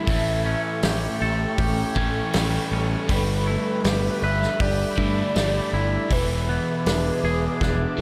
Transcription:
Already playing: clean electric guitar A3 E4 G4, overdriven electric guitar A3 E4 G4, soft synth lead E5
0.05 fingered electric bass A1, overdriven electric guitar A2 E3 A3, clean electric guitar A2, ambient pad A4 G5, kick, open hi-hat
0.10 ambient pad C#6
0.45 overdriven electric guitar E3, clean electric guitar C#4
0.83 fingered electric bass A1, overdriven electric guitar C#4, clean electric guitar G4, snare, open hi-hat
1.21 fingered electric bass A1, overdriven electric guitar G4, clean electric guitar A4
1.58 fingered electric bass A1, overdriven electric guitar C#4, clean electric guitar G4, kick, open hi-hat
1.95 fingered electric bass A1, overdriven electric guitar A2 E3 A3, clean electric guitar C#4, kick
2.32 fingered electric bass A1, overdriven electric guitar A2 E3 C#4, clean electric guitar G3, snare, open hi-hat
2.36 overdriven electric guitar A3
2.72 fingered electric bass A1, overdriven electric guitar G3, clean electric guitar C#4
3.08 fingered electric bass G1, overdriven electric guitar G2 D3 G3, clean electric guitar G3, soft synth lead B4, ambient pad E5 B5, kick, open hi-hat
3.47 overdriven electric guitar A3, clean electric guitar E4
3.84 fingered electric bass G1, clean electric guitar G4, overdriven electric guitar G4, snare, open hi-hat
4.22 fingered electric bass G1, clean electric guitar B4, overdriven electric guitar B4, soft synth lead E5
4.42 snare
4.60 fingered electric bass G1, clean electric guitar G4, overdriven electric guitar G4, soft synth lead D5, kick, open hi-hat
4.96 fingered electric bass G2, overdriven electric guitar G2 D3 G3, clean electric guitar E4, kick
5.00 overdriven electric guitar A3
5.33 fingered electric bass G1, overdriven electric guitar G2 D3 G3 G4, clean electric guitar A3, snare, open hi-hat
5.73 fingered electric bass G1, clean electric guitar E4, overdriven electric guitar E4
6.08 fingered electric bass E1, overdriven electric guitar E2 B2 E3, clean electric guitar E3, soft synth lead B4, kick, open hi-hat
6.13 ambient pad G#4 D6
6.49 overdriven electric guitar E3, clean electric guitar B3
6.86 fingered electric bass E1, overdriven electric guitar D4, clean electric guitar D4, snare, open hi-hat
7.23 fingered electric bass E1, overdriven electric guitar G#4, clean electric guitar G#4
7.61 fingered electric bass E1, overdriven electric guitar D4, clean electric guitar D4, kick, snare
7.97 overdriven electric guitar E3

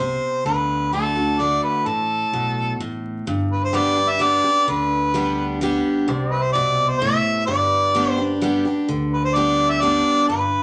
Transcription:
Already playing: fingered electric bass C2
0.00 steel-string acoustic guitar C3, harmonica C5
0.45 fingered electric bass D2, steel-string acoustic guitar D3, harmonica B4
0.92 steel-string acoustic guitar D3 A3 D4 F#4, harmonica A4
1.16 steel-string acoustic guitar D4 F#4
1.39 steel-string acoustic guitar D3 A3 D4 F#4, harmonica D5
1.63 harmonica B4
1.86 fingered electric bass A1, steel-string acoustic guitar A2, harmonica A4
2.33 fingered electric bass B1, steel-string acoustic guitar B2
2.80 fingered electric bass A1, steel-string acoustic guitar A2
3.27 fingered electric bass G1, steel-string acoustic guitar G2
3.52 harmonica B4
3.64 harmonica C5
3.73 steel-string acoustic guitar G3 B3 D4 G4, pedal steel guitar G4 B4 D5, harmonica D5
3.96 steel-string acoustic guitar D4 G4
4.09 harmonica E5
4.19 steel-string acoustic guitar G3 B3 D4 G4, harmonica D5
4.44 steel-string acoustic guitar D4 G4
4.68 fingered electric bass D2, steel-string acoustic guitar D3, harmonica B4
5.14 steel-string acoustic guitar G3 B3 D4 G4
5.61 steel-string acoustic guitar G3 B3 D4 G4
6.08 fingered electric bass C2, steel-string acoustic guitar C3, pedal steel guitar G4 C5 D5
6.31 harmonica B4
6.36 pedal steel guitar E5
6.42 harmonica C5
6.53 steel-string acoustic guitar B2, harmonica D5
6.88 harmonica C5
7.00 steel-string acoustic guitar A2, harmonica E5
7.47 fingered electric bass G1, steel-string acoustic guitar G2, pedal steel guitar G4 B4 D5, harmonica D5
7.95 steel-string acoustic guitar G3 B3 D4 G4
8.11 harmonica C5
8.18 steel-string acoustic guitar D4 G4
8.41 steel-string acoustic guitar G3 B3 D4 G4
8.65 steel-string acoustic guitar D4 G4
8.88 fingered electric bass D2, steel-string acoustic guitar D3
9.13 harmonica B4
9.24 harmonica C5
9.35 steel-string acoustic guitar G3 B3 D4 G4, harmonica D5
9.70 harmonica E5
9.81 steel-string acoustic guitar G3 B3 D4 G4, harmonica D5
10.28 fingered electric bass G1, steel-string acoustic guitar G2, harmonica B4

